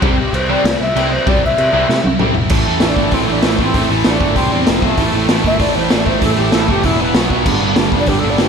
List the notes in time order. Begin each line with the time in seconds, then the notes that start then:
0.01 C2 C3 E3 G3 C4 E4, kick, crash
0.17 C3 E3 G3 C4 E4 G4
0.33 C2 C3 E3 G3 C4 E4 C5, crash
0.49 C3 E3 G3 C4 E4 D5
0.64 C2 C3 E3 G3 C4 E4, snare, crash
0.80 C2 C3 E3 G3 C4 E4 E5
0.95 C2 C3 E3 G3 C4 E4, crash
1.11 C3 E3 G3 C4 E4 C5
1.26 C2 C3 E3 G3 C4 E4 D5, kick, crash
1.42 C2 C3 E3 G3 C4 E4 E5
1.58 C3 E3 G3 C4 E4, crash
1.73 C2 C3 E3 G3 C4 E4
1.89 C3 E3 G3 C4 E4, snare
2.04 C2 C3 E3 G3 C4 E4, high tom
2.19 C2 C3 E3 G3 C4 E4, mid tom
2.35 B1 C3 E3 G3 C4 E4, floor tom
2.49 A1 A2 E3 A3 C4 E4, kick, crash
2.66 A1 A2 E3 A3 C4 E4
2.80 A1 A2 E3 A3 C4, snare, open hi-hat
2.84 D4 E4
2.97 G1 A2 E3 A3 C4 E4, kick
3.12 A1 A2 E3 A3 C4 E4, kick, open hi-hat
3.28 A1 A2 E3 A3 C4 D4 E4
3.43 A1 A2 E3 A3 C4 E4, snare, open hi-hat
3.59 A1 A2 E3 A3 C4 E4, kick
3.74 A1 A2 E3 A3 C4 E4, kick, open hi-hat
3.90 A1 A2 E3 A3 C4 E4
4.04 A1 A2 E3 A3 C4 D4 E4, snare, open hi-hat
4.19 G1 A2 E3 A3 C4 E4, kick
4.34 C2 C3 G3 C4 G4, kick, open hi-hat
4.50 E2 C3 G3 C4 D4 G4
4.66 F1 F2 C3 F3 C4 E4 F4 C5, snare, open hi-hat
4.81 B1 F2 C3 F3 A3 C4 F4 C5, kick
4.96 A1 A2 E3 A3 C4 E4 C5, kick, open hi-hat
5.12 A1 A2 E3 A3 C4 E4 C5
5.28 A1 A2 E3 A3 C4 E4 C5, snare, open hi-hat
5.42 G1 A2 E3 A3 C4 E4 C5, kick
5.47 E5
5.58 A1 A2 E3 A3 C4 E4 C5 D5, kick, open hi-hat
5.73 A1 A2 E3 A3 C4 E4 C5
5.90 A1 A2 E3 A3 C4 E4 C5 D5, snare, open hi-hat
6.06 A1 A2 E3 A3 C4 E4 C5, kick
6.20 A1 A2 E3 A3 C4 E4 A4 C5, kick, open hi-hat
6.36 A1 A2 E3 A3 C4 E4 G4 C5
6.51 A1 A2 E3 A3 C4 E4 A4 C5, snare, open hi-hat
6.67 F1 A2 E3 A3 C4 E4 G4 C5, kick
6.83 E1 E2 B2 E3 B3 E4 B4, kick, open hi-hat
6.99 E1 E2 B2 E3 B3 E4 B4
7.14 B1 B2 F#3 B3 F#4, snare, open hi-hat
7.30 B1 B2 F#3 B3 F#4, kick
7.45 G1 G2 D3 G3 B3 D4, kick, crash
7.61 G1 G2 D3 G3 B3 D4
7.76 G1 G2 D3 G3 B3 D4, snare, open hi-hat
7.91 F1 G2 D3 G3 B3 D4, kick
8.00 D5
8.06 G1 G2 D3 G3 B3 D4 G4, kick, open hi-hat
8.19 B3 D4 A4
8.23 G1 G2 D3 G3
8.30 D5
8.38 G1 G2 D3 G3 B3 D4, snare, open hi-hat
8.42 G4